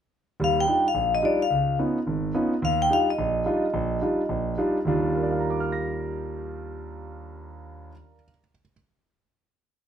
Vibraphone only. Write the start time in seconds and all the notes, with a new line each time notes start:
0.44 F5
0.60 G5
0.88 F5
1.15 D#5
1.25 D5
1.42 F5
2.65 F5
2.82 G5
2.93 F5
3.10 D#5